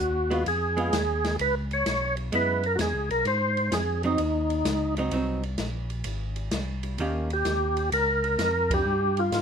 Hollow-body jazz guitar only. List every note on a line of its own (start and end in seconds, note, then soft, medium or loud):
0.30 0.44 G#3 medium
0.30 0.45 B3 medium
0.30 0.45 F4 medium
0.77 0.91 G#3 medium
0.77 0.91 B3 medium
0.77 0.91 F4 medium
2.32 2.61 G#3 medium
2.32 2.62 B3 medium
2.32 2.62 E4 medium
4.04 4.18 F#3 medium
4.04 4.18 C4 medium
4.04 4.18 D#4 medium
4.98 5.12 F#3 medium
4.98 5.12 C4 medium
4.98 5.13 D#4 medium
5.13 5.41 F#3 medium
5.13 5.41 C4 medium
5.13 5.42 D#4 medium
7.00 7.28 D#3 medium
7.00 7.28 A#3 medium
7.00 7.29 C#4 medium
7.00 7.29 G4 medium